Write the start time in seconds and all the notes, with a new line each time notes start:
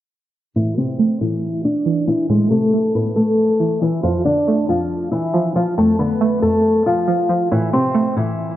0.56 A2 E3 E4
0.77 C3 C4 C5
0.99 A3
1.21 A2 E3 E4
1.65 D4 D5
1.86 E3
2.08 E3 E4
2.29 A2 G#3 G#4
2.50 C3 A3 A4
2.73 A3
2.95 A2 B3 B4
3.16 A3 A4
3.60 E3
3.82 E3 E4
4.03 F2 F3 F4
4.25 D3 D4 D5
4.48 A3
4.69 F2 F3 F4
5.12 E3 E4
5.34 F3
5.56 F3 F4
5.78 F2 A3 A4
5.99 D3 B3 B4
6.21 A3
6.42 F2 A3 A4
6.86 F3 F4
7.08 F3
7.29 F3
7.52 A2 E3 E4
7.73 C3 C4 C5
7.95 A3
8.17 A2 E3 E4